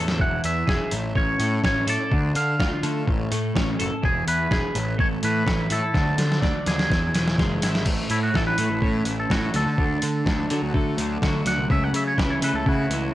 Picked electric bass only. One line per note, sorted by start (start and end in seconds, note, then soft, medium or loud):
0.00 0.18 E2 medium
0.20 0.39 E1 medium
0.44 0.63 E2 medium
0.68 0.77 E1 medium
0.92 1.11 A1 loud
1.15 1.34 A1 medium
1.40 1.58 A2 medium
1.64 1.82 A1 medium
1.87 1.97 A2 medium
2.12 2.30 D2 medium
2.36 2.54 D3 medium
2.60 2.69 D2 loud
2.83 3.02 D3 loud
3.07 3.26 A1 loud
3.32 3.50 A2 loud
3.56 3.74 A1 loud
3.81 3.89 F#1 loud
4.03 4.22 E1 medium
4.27 4.46 E2 medium
4.51 4.60 E1 medium
4.75 4.94 A1 loud
4.99 5.18 A1 medium
5.23 5.42 A2 loud
5.47 5.65 A1 loud
5.71 5.80 A2 loud
5.94 6.13 D2 medium
6.18 6.37 D3 medium
6.42 6.52 D2 loud
6.67 6.85 D#2 loud
6.90 7.09 E2 medium
7.13 7.36 E1 medium
7.38 7.60 F#1 medium
7.62 7.84 G#1 medium
7.86 8.05 A1 medium
8.10 8.29 A2 medium
8.34 8.53 A1 medium
8.58 8.67 A2 loud
8.70 8.80 A1 medium
8.82 9.01 A2 medium
9.06 9.25 A1 medium
9.30 9.49 A2 loud
9.54 9.63 D2 medium
9.66 9.76 D3 medium
9.78 9.97 D2 medium
10.03 10.21 D3 medium
10.26 10.44 D2 medium
10.51 10.60 D3 medium
10.62 10.71 D2 medium
10.74 10.93 D3 medium
10.98 11.17 D2 medium
11.22 11.41 D3 loud
11.46 11.55 D2 medium
11.58 11.67 C2 medium
11.70 11.89 C#2 medium
11.93 12.12 C#3 loud
12.18 12.37 C#2 medium
12.42 12.51 C#3 loud
12.53 12.63 C#2 medium
12.66 12.85 C#3 medium
12.90 13.08 C#2 medium